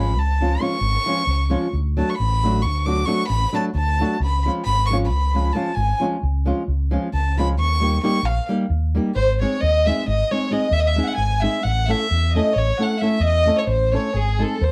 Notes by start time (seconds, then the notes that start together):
Already playing: G#1 F3 G#3 C#4 F4 B5
0.17 C#2 A5
0.41 F3 G#3 C#4 F4
0.60 F3 G#3 C#4 F4 C#6
0.81 G#1
1.06 F3 G#3 C#4 F4
1.27 C#2
1.50 F3 G#3 C#4 F4
1.73 D2
1.97 F#3 A3 D4 F#4 A5
2.10 C#6
2.14 B5
2.20 A1
2.44 F#3 A3 D4 F#4
2.62 D2 C#6
2.86 F#3 A3 D4 F#4 D6
3.05 F#3 A3 D4 F#4 C#6
3.28 A1 B5
3.53 F#3 A3 D4 F#4 A5
3.75 D2 A5
4.00 F#3 A3 D4 F#4
4.20 C#2 B5
4.46 F3 G#3 C#4 F4
4.65 G#1 B5
4.86 F3 C#6
4.91 G#3 C#4 F4
5.07 B5
5.12 C#2
5.34 F3 G#3 C#4 F4
5.53 F3 G#3 C#4 F4 A5
5.74 G#1 G#5
6.00 F3 G#3 C#4 F4
6.23 C#2
6.46 F3 G#3 C#4 F4
6.68 C#2
6.91 F3 G#3 C#4 F4
7.13 C#2 A5
7.37 F3 G#3 C#4 F4 B5
7.59 D#2 C#6
7.80 G3 A#3 D#4 G4
8.03 G3 A#3 D#4 G4 C#6
8.23 A#1 F5
8.49 G3 A#3 D#4 G4
8.70 D#2
8.95 G3 A#3 D#4 G4
9.15 G#1 C5
9.41 G#3 C4 D#4 G#4 C#5
9.61 D#2 D#5
9.85 G#3 C4 D#4 G#4 E5
10.07 G#1 D#5
10.31 G#3 C4 D#4 G#4 C#5
10.51 G#3 C4 D#4 G#4 D#5
10.71 D#2 E5
10.80 D#5
10.85 E5
10.96 G#3 C4 D#4 G#4
11.04 F#5
11.16 G#1 G#5
11.40 G#3 C4 D#4 G#4 E5
11.63 A1 F#5
11.86 A3 C#4 E4 A4 E5
11.90 E5
12.11 E2
12.32 A3 C#4 D#5
12.36 E4 A4
12.53 A1 C#5
12.58 C#5
12.77 A3 C#4 E4 A4 F#5
12.82 F#5
12.97 E5
13.01 A3 C#4 E4 A4 E5
13.20 E2 D#5
13.46 A3 C#4 E4 A4
13.56 C#5
13.66 A1 C5
13.91 A3 C#4 E4 A4 C#5
13.96 C#5
14.13 G#1 G#4
14.39 G#3 C4 D#4 G#4 A4
14.61 D#2 C5